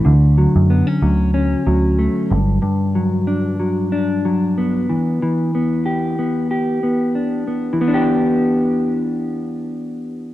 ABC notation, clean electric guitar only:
X:1
M:4/4
L:1/16
Q:"Swing 16ths" 1/4=93
K:Edor
V:1 name="Clean electric guitar"
D,2 F,2 B, C F,2 C2 F,2 A,2 G,,2 | G,,2 F,2 D2 F,2 D2 F,2 B,2 E,2 | E,2 B,2 G2 B,2 G2 B,2 D2 B,2 | [E,B,DG]16 |]